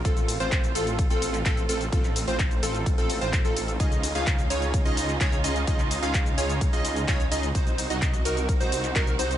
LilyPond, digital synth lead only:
\new Staff \with { instrumentName = "Digital synth lead" } { \time 4/4 \key des \major \tempo 4 = 128 a'8. c''8. a'8. a'8. a'16 r16 a'16 r16 | a'8. c''8. a'8. a'8 c''8 a'8. | ees''8. f''8. des''8. ees''8. des''16 r16 ees''16 r16 | ees''8. f''8. des''8. ees''8. des''16 r16 ees''16 r16 |
c''8. ees''8. bes'8. c''8. bes'16 r16 c''16 r16 | }